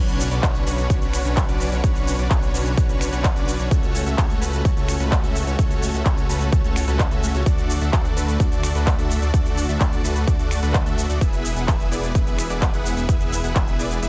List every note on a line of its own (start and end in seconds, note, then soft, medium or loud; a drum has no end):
0.00 0.29 B1 loud
0.00 0.29 C#4 loud
0.00 0.29 D4 medium
0.00 0.29 F#4 medium
0.00 0.29 B4 medium
0.00 0.29 C#5 loud
0.08 closed hi-hat soft
0.08 shaker soft
0.20 open hi-hat loud
0.20 shaker medium
0.31 0.41 B1 loud
0.31 0.40 C#4 medium
0.31 0.40 D4 medium
0.31 0.40 F#4 medium
0.31 0.40 B4 medium
0.31 0.40 D5 medium
0.31 closed hi-hat medium
0.31 shaker soft
0.43 0.64 B1 loud
0.43 0.64 C#4 medium
0.43 0.64 D4 medium
0.43 0.64 C#5 medium
0.43 kick loud
0.43 clap loud
0.43 closed hi-hat medium
0.43 shaker soft
0.55 closed hi-hat soft
0.55 shaker soft
0.67 0.88 B1 medium
0.67 0.87 C#4 medium
0.67 0.87 D4 medium
0.67 0.87 F#4 medium
0.67 0.87 B4 medium
0.67 0.87 C#5 medium
0.67 open hi-hat medium
0.67 shaker medium
0.78 closed hi-hat medium
0.78 shaker soft
0.90 0.99 B1 loud
0.90 0.99 C#4 medium
0.90 0.99 D4 medium
0.90 0.99 F#4 medium
0.90 0.99 B4 medium
0.90 kick loud
0.90 closed hi-hat medium
0.90 shaker soft
1.02 1.23 B1 loud
1.02 1.22 C#4 medium
1.02 1.22 D4 medium
1.02 1.22 F#4 medium
1.02 1.22 B4 medium
1.02 1.22 C#5 medium
1.02 closed hi-hat soft
1.02 shaker soft
1.13 finger snap medium
1.13 open hi-hat loud
1.13 shaker medium
1.25 1.46 B1 loud
1.25 1.45 C#4 loud
1.25 1.45 D4 medium
1.25 1.45 F#4 medium
1.25 1.45 B4 medium
1.25 1.45 C#5 loud
1.25 closed hi-hat medium
1.25 shaker soft
1.37 kick loud
1.37 clap loud
1.37 closed hi-hat medium
1.37 shaker soft
1.49 1.70 B1 loud
1.49 1.69 C#4 loud
1.49 1.69 D4 medium
1.49 1.69 F#4 medium
1.49 1.69 B4 medium
1.49 1.69 D5 loud
1.49 closed hi-hat soft
1.49 shaker soft
1.60 open hi-hat medium
1.60 shaker medium
1.72 1.81 B1 loud
1.72 1.81 C#4 medium
1.72 1.81 D4 medium
1.72 1.81 F#4 medium
1.72 1.81 B4 medium
1.72 1.81 C#5 loud
1.72 closed hi-hat medium
1.72 shaker soft
1.84 2.17 B1 loud
1.84 2.16 C#4 loud
1.84 2.16 D4 medium
1.84 2.16 F#4 medium
1.84 2.16 B4 loud
1.84 kick loud
1.84 closed hi-hat medium
1.84 shaker soft
1.96 closed hi-hat soft
1.96 shaker soft
2.07 open hi-hat loud
2.07 shaker medium
2.19 2.28 B1 loud
2.19 2.28 C#4 medium
2.19 2.28 D4 medium
2.19 2.28 F#4 medium
2.19 2.28 B4 medium
2.19 2.28 D5 medium
2.19 closed hi-hat medium
2.19 shaker soft
2.30 2.52 B1 loud
2.30 2.51 C#4 medium
2.30 2.51 D4 medium
2.30 2.51 C#5 medium
2.30 kick loud
2.30 clap loud
2.30 closed hi-hat medium
2.30 shaker soft
2.42 closed hi-hat soft
2.42 shaker soft
2.54 2.75 B1 medium
2.54 2.75 C#4 medium
2.54 2.75 D4 medium
2.54 2.75 F#4 medium
2.54 2.75 B4 medium
2.54 2.75 C#5 medium
2.54 open hi-hat loud
2.54 shaker medium
2.66 closed hi-hat medium
2.66 shaker soft
2.77 2.87 B1 loud
2.77 2.86 C#4 medium
2.77 2.86 D4 medium
2.77 2.86 F#4 medium
2.77 2.86 B4 medium
2.77 2.86 C#5 loud
2.77 kick loud
2.77 closed hi-hat medium
2.77 shaker soft
2.89 3.10 B1 loud
2.89 3.10 C#4 medium
2.89 3.10 D4 medium
2.89 3.10 F#4 medium
2.89 3.10 B4 medium
2.89 3.10 C#5 medium
2.89 closed hi-hat soft
2.89 shaker soft
3.01 finger snap medium
3.01 open hi-hat loud
3.01 shaker medium
3.13 3.34 B1 loud
3.13 3.33 C#4 loud
3.13 3.33 D4 medium
3.13 3.33 F#4 medium
3.13 3.33 B4 medium
3.13 3.33 C#5 loud
3.13 closed hi-hat medium
3.13 shaker soft
3.24 kick loud
3.24 clap loud
3.24 closed hi-hat medium
3.24 shaker soft
3.36 3.57 B1 loud
3.36 3.57 C#4 loud
3.36 3.57 D4 loud
3.36 3.57 F#4 medium
3.36 3.57 B4 medium
3.36 3.57 D5 loud
3.36 closed hi-hat soft
3.36 shaker soft
3.48 open hi-hat loud
3.48 shaker medium
3.59 3.69 B1 loud
3.59 3.68 C#4 medium
3.59 3.68 D4 medium
3.59 3.68 F#4 medium
3.59 3.68 B4 medium
3.59 3.68 C#5 medium
3.59 closed hi-hat medium
3.59 shaker soft
3.71 4.04 C#2 loud
3.71 4.04 A3 loud
3.71 4.04 C#4 medium
3.71 4.04 F#4 medium
3.71 4.04 A4 medium
3.71 4.04 C#5 loud
3.71 kick loud
3.71 closed hi-hat medium
3.71 shaker soft
3.83 closed hi-hat soft
3.83 shaker soft
3.95 open hi-hat loud
3.95 shaker medium
4.06 4.16 C#2 loud
4.06 4.15 A3 medium
4.06 4.15 C#4 medium
4.06 4.15 F#4 medium
4.06 4.15 A4 medium
4.06 4.15 E5 medium
4.06 closed hi-hat medium
4.06 shaker soft
4.18 4.39 C#2 loud
4.18 4.39 A3 medium
4.18 4.39 C#4 medium
4.18 4.39 F#4 medium
4.18 4.39 A4 medium
4.18 4.39 C#5 loud
4.18 kick loud
4.18 clap loud
4.18 closed hi-hat medium
4.18 shaker soft
4.30 closed hi-hat soft
4.30 shaker soft
4.42 4.63 C#2 loud
4.42 4.62 A3 medium
4.42 4.62 C#4 medium
4.42 4.62 F#4 medium
4.42 4.62 A4 medium
4.42 4.62 B4 medium
4.42 open hi-hat loud
4.42 shaker medium
4.53 closed hi-hat medium
4.53 shaker soft
4.65 4.74 C#2 medium
4.65 4.74 F#4 medium
4.65 kick loud
4.65 closed hi-hat medium
4.65 shaker soft
4.77 4.98 C#2 loud
4.77 4.97 A3 medium
4.77 4.97 C#4 medium
4.77 4.97 F#4 medium
4.77 4.97 A4 medium
4.77 4.97 C#5 medium
4.77 closed hi-hat soft
4.77 shaker soft
4.88 finger snap medium
4.88 open hi-hat loud
4.88 shaker medium
5.00 5.21 C#2 loud
5.00 5.20 A3 loud
5.00 5.20 C#4 medium
5.00 5.20 F#4 medium
5.00 5.20 A4 medium
5.00 5.20 B4 loud
5.00 closed hi-hat medium
5.00 shaker soft
5.12 kick loud
5.12 clap loud
5.12 closed hi-hat medium
5.12 shaker soft
5.24 5.45 C#2 loud
5.24 5.44 A3 loud
5.24 5.44 C#4 medium
5.24 5.44 F#4 medium
5.24 5.44 A4 loud
5.24 5.44 E5 loud
5.24 closed hi-hat soft
5.24 shaker soft
5.35 open hi-hat loud
5.35 shaker medium
5.47 5.56 C#2 loud
5.47 5.56 A3 medium
5.47 5.56 C#4 medium
5.47 5.56 F#4 medium
5.47 5.56 A4 medium
5.47 5.56 C#5 medium
5.47 closed hi-hat soft
5.47 shaker soft
5.59 5.92 C#2 loud
5.59 5.91 A3 loud
5.59 5.91 C#4 medium
5.59 5.91 C#5 loud
5.59 kick loud
5.59 closed hi-hat medium
5.59 shaker soft
5.71 closed hi-hat soft
5.71 shaker soft
5.82 open hi-hat loud
5.82 shaker medium
5.94 6.03 C#2 loud
5.94 6.03 A3 medium
5.94 6.03 C#4 medium
5.94 6.03 F#4 medium
5.94 6.03 A4 medium
5.94 6.03 E5 medium
5.94 closed hi-hat medium
5.94 shaker soft
6.06 6.27 C#2 loud
6.06 6.26 A3 medium
6.06 6.26 A4 medium
6.06 kick loud
6.06 clap loud
6.06 closed hi-hat medium
6.06 shaker soft
6.17 closed hi-hat soft
6.17 shaker soft
6.29 6.50 C#2 medium
6.29 6.50 A3 medium
6.29 6.50 C#4 medium
6.29 6.50 F#4 medium
6.29 6.50 A4 medium
6.29 6.50 B4 medium
6.29 open hi-hat loud
6.29 shaker medium
6.41 closed hi-hat medium
6.41 shaker soft
6.53 6.62 C#2 loud
6.53 6.61 A3 medium
6.53 6.61 C#4 medium
6.53 kick loud
6.53 closed hi-hat medium
6.53 shaker soft
6.64 6.85 C#2 loud
6.64 6.85 A3 medium
6.64 6.85 C#4 medium
6.64 6.85 F#4 medium
6.64 6.85 A4 medium
6.64 6.85 C#5 medium
6.64 closed hi-hat soft
6.64 shaker soft
6.76 finger snap medium
6.76 open hi-hat loud
6.76 shaker medium
6.88 7.09 C#2 loud
6.88 7.08 A3 loud
6.88 7.08 C#4 medium
6.88 7.08 F#4 medium
6.88 7.08 A4 medium
6.88 7.08 B4 loud
6.88 closed hi-hat soft
6.88 shaker soft
6.99 kick loud
6.99 clap loud
6.99 closed hi-hat medium
6.99 shaker soft
7.11 7.32 C#2 loud
7.11 7.32 A3 loud
7.11 7.32 C#4 loud
7.11 7.32 F#4 medium
7.11 7.32 A4 medium
7.11 7.32 E5 loud
7.11 closed hi-hat soft
7.11 shaker soft
7.23 open hi-hat loud
7.23 shaker medium
7.34 7.44 C#2 loud
7.34 7.43 A3 medium
7.34 7.43 C#4 medium
7.34 7.43 F#4 medium
7.34 7.43 A4 medium
7.34 7.43 C#5 medium
7.34 closed hi-hat soft
7.34 shaker soft
7.46 7.79 D2 loud
7.46 7.79 D4 medium
7.46 7.79 D5 loud
7.46 kick loud
7.46 closed hi-hat medium
7.46 shaker soft
7.58 closed hi-hat soft
7.58 shaker soft
7.70 open hi-hat loud
7.70 shaker medium
7.81 7.91 D2 loud
7.81 7.90 A3 medium
7.81 7.90 D4 medium
7.81 7.90 F#4 medium
7.81 7.90 A4 medium
7.81 7.90 E5 medium
7.81 closed hi-hat soft
7.81 shaker soft
7.93 8.14 D2 loud
7.93 8.14 A3 medium
7.93 8.14 D4 medium
7.93 8.14 F#4 medium
7.93 8.14 A4 medium
7.93 8.14 D5 loud
7.93 kick loud
7.93 clap loud
7.93 closed hi-hat medium
7.93 shaker soft
8.05 closed hi-hat soft
8.05 shaker soft
8.17 8.38 D2 medium
8.17 8.37 A3 medium
8.17 8.37 D4 medium
8.17 8.37 F#4 medium
8.17 8.37 A4 medium
8.17 8.37 B4 medium
8.17 open hi-hat medium
8.17 shaker medium
8.28 closed hi-hat medium
8.28 shaker soft
8.40 8.49 D2 loud
8.40 8.49 A3 medium
8.40 8.49 D4 medium
8.40 8.49 F#4 medium
8.40 8.49 A4 medium
8.40 8.49 D5 medium
8.40 kick loud
8.40 closed hi-hat medium
8.40 shaker soft
8.52 8.73 D2 loud
8.52 8.72 A3 medium
8.52 8.72 D4 medium
8.52 8.72 F#4 medium
8.52 8.72 A4 medium
8.52 8.72 D5 medium
8.52 closed hi-hat soft
8.52 shaker soft
8.63 finger snap medium
8.63 open hi-hat loud
8.63 shaker medium
8.75 8.96 D2 loud
8.75 8.95 A3 loud
8.75 8.95 D4 medium
8.75 8.95 F#4 medium
8.75 8.95 A4 medium
8.75 8.95 B4 loud
8.75 closed hi-hat soft
8.75 shaker soft
8.87 kick loud
8.87 clap loud
8.87 closed hi-hat medium
8.87 shaker soft
8.98 9.20 D2 loud
8.98 9.19 A3 loud
8.98 9.19 D4 medium
8.98 9.19 F#4 medium
8.98 9.19 A4 medium
8.98 9.19 E5 loud
8.98 closed hi-hat soft
8.98 shaker soft
9.10 open hi-hat medium
9.10 shaker medium
9.22 9.31 D2 loud
9.22 9.31 A3 medium
9.22 9.31 D4 medium
9.22 9.31 F#4 medium
9.22 9.31 A4 medium
9.22 9.31 D5 medium
9.22 closed hi-hat soft
9.22 shaker soft
9.34 9.67 D2 loud
9.34 9.66 A3 loud
9.34 9.66 F#4 medium
9.34 kick loud
9.34 closed hi-hat medium
9.34 shaker soft
9.46 closed hi-hat soft
9.46 shaker soft
9.57 open hi-hat loud
9.57 shaker medium
9.69 9.78 D2 loud
9.69 9.78 A3 medium
9.69 9.78 D4 medium
9.69 9.78 F#4 medium
9.69 9.78 A4 medium
9.69 9.78 E5 medium
9.69 closed hi-hat medium
9.69 shaker soft
9.80 10.02 D2 loud
9.80 10.01 A3 medium
9.80 10.01 D4 medium
9.80 10.01 F#4 medium
9.80 10.01 A4 medium
9.80 10.01 D5 medium
9.80 kick loud
9.80 clap loud
9.80 closed hi-hat medium
9.80 shaker soft
9.92 closed hi-hat soft
9.92 shaker soft
10.04 10.25 D2 medium
10.04 10.25 A3 medium
10.04 10.25 D4 medium
10.04 10.25 F#4 medium
10.04 10.25 A4 medium
10.04 10.25 B4 medium
10.04 open hi-hat medium
10.04 shaker medium
10.16 closed hi-hat medium
10.16 shaker soft
10.27 10.37 D2 loud
10.27 10.36 A3 medium
10.27 10.36 D4 medium
10.27 10.36 F#4 medium
10.27 10.36 D5 loud
10.27 kick loud
10.27 closed hi-hat medium
10.27 shaker soft
10.39 10.60 D2 loud
10.39 10.60 A3 medium
10.39 10.60 D4 medium
10.39 10.60 F#4 medium
10.39 10.60 A4 medium
10.39 10.60 D5 medium
10.39 closed hi-hat soft
10.39 shaker soft
10.51 finger snap medium
10.51 open hi-hat loud
10.51 shaker medium
10.63 10.84 D2 loud
10.63 10.83 A3 loud
10.63 10.83 D4 medium
10.63 10.83 F#4 medium
10.63 10.83 A4 medium
10.63 10.83 B4 loud
10.63 closed hi-hat medium
10.63 shaker soft
10.74 kick loud
10.74 clap loud
10.74 closed hi-hat medium
10.74 shaker soft
10.86 11.07 D2 loud
10.86 11.07 A3 loud
10.86 11.07 D4 loud
10.86 11.07 F#4 medium
10.86 11.07 A4 loud
10.86 11.07 E5 loud
10.86 closed hi-hat soft
10.86 shaker soft
10.98 open hi-hat medium
10.98 shaker medium
11.09 11.19 D2 loud
11.09 11.18 A3 medium
11.09 11.18 D4 medium
11.09 11.18 F#4 medium
11.09 11.18 A4 medium
11.09 11.18 D5 medium
11.09 closed hi-hat soft
11.09 shaker soft
11.21 11.54 E1 loud
11.21 11.54 E4 medium
11.21 11.54 G#4 medium
11.21 11.54 B4 medium
11.21 kick loud
11.21 closed hi-hat medium
11.21 shaker soft
11.33 closed hi-hat soft
11.33 shaker soft
11.45 open hi-hat loud
11.45 shaker medium
11.56 11.66 E1 loud
11.56 11.65 B3 medium
11.56 11.65 E4 medium
11.56 11.65 G#4 medium
11.56 11.65 B4 medium
11.56 11.65 F#5 medium
11.56 closed hi-hat medium
11.56 shaker soft
11.68 11.89 E1 loud
11.68 11.89 B3 medium
11.68 11.89 E4 medium
11.68 11.89 B4 medium
11.68 kick loud
11.68 clap loud
11.68 closed hi-hat medium
11.68 shaker soft
11.80 closed hi-hat soft
11.80 shaker soft
11.92 12.13 E1 medium
11.92 12.12 B3 medium
11.92 12.12 E4 medium
11.92 12.12 G#4 medium
11.92 12.12 B4 medium
11.92 12.12 D5 medium
11.92 open hi-hat medium
11.92 shaker medium
12.03 closed hi-hat medium
12.03 shaker soft
12.15 12.24 E1 medium
12.15 12.24 B3 medium
12.15 12.24 E4 medium
12.15 12.24 G#4 medium
12.15 12.24 B4 medium
12.15 kick loud
12.15 closed hi-hat medium
12.15 shaker soft
12.27 12.48 E1 loud
12.27 12.47 B3 medium
12.27 12.47 E4 medium
12.27 12.47 G#4 medium
12.27 12.47 B4 medium
12.27 12.47 E5 medium
12.27 closed hi-hat soft
12.27 shaker soft
12.39 finger snap medium
12.39 open hi-hat loud
12.39 shaker medium
12.50 12.71 E1 loud
12.50 12.70 B3 loud
12.50 12.70 E4 medium
12.50 12.70 G#4 medium
12.50 12.70 B4 medium
12.50 12.70 D5 loud
12.50 closed hi-hat medium
12.50 shaker soft
12.62 kick loud
12.62 clap loud
12.62 closed hi-hat medium
12.62 shaker soft
12.74 12.95 E1 loud
12.74 12.94 B3 loud
12.74 12.94 E4 medium
12.74 12.94 G#4 medium
12.74 12.94 B4 loud
12.74 12.94 F#5 loud
12.74 closed hi-hat soft
12.74 shaker soft
12.85 open hi-hat medium
12.85 shaker medium
12.97 13.06 E1 loud
12.97 13.06 B3 medium
12.97 13.06 E4 medium
12.97 13.06 G#4 medium
12.97 13.06 B4 medium
12.97 13.06 E5 medium
12.97 closed hi-hat medium
12.97 shaker soft
13.09 13.42 E1 loud
13.09 13.41 B3 loud
13.09 13.41 E4 medium
13.09 13.41 G#4 medium
13.09 13.41 B4 medium
13.09 13.41 E5 loud
13.09 kick loud
13.09 closed hi-hat medium
13.09 shaker soft
13.21 closed hi-hat soft
13.21 shaker soft
13.32 open hi-hat loud
13.32 shaker medium
13.44 13.53 E1 loud
13.44 13.53 B3 medium
13.44 13.53 E4 medium
13.44 13.53 G#4 medium
13.44 13.53 B4 medium
13.44 13.53 F#5 medium
13.44 closed hi-hat medium
13.44 shaker soft
13.56 13.77 E1 loud
13.56 13.76 B3 medium
13.56 13.76 B4 medium
13.56 kick loud
13.56 clap loud
13.56 closed hi-hat medium
13.56 shaker soft
13.67 closed hi-hat soft
13.67 shaker soft
13.79 14.00 E1 medium
13.79 14.00 B3 medium
13.79 14.00 E4 medium
13.79 14.00 G#4 medium
13.79 14.00 B4 medium
13.79 14.00 D5 medium
13.79 open hi-hat medium
13.79 shaker medium
13.91 closed hi-hat medium
13.91 shaker soft
14.02 14.09 E1 loud
14.02 14.09 B3 medium
14.02 14.09 E4 medium
14.02 14.09 G#4 medium
14.02 14.09 B4 medium
14.02 14.09 E5 loud
14.02 closed hi-hat medium
14.02 shaker soft